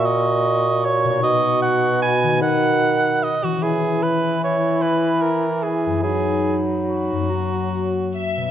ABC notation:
X:1
M:3/4
L:1/16
Q:1/4=148
K:B
V:1 name="Flute"
c'12- | c'8 b4- | b8- b z3 | b12- |
b12 | b12 | a8 e4 |]
V:2 name="Violin section"
z12 | z12 | z12 | z12 |
z12 | z12 | z8 e4 |]
V:3 name="Cor anglais"
d8 c4 | d4 f4 g4 | f8 d2 F2 | G4 B4 c4 |
B4 A4 G4 | G6 z2 F4- | F8- F2 z2 |]
V:4 name="Clarinet"
F12 | F12- | F8- F z3 | E12- |
E12 | D12 | F8- F2 z2 |]
V:5 name="Harp"
[A,,CEFc]12 | [B,,DFB]12 | [D,DFB]12 | [E,CEB]12- |
[E,CEB]12 | [F,,B,DB]12 | [F,,A,Cc]12 |]
V:6 name="Bassoon" clef=bass
A,,12 | B,,12 | D,8- D, z3 | E,12- |
E,12 | F,12- | F,8- F,2 z2 |]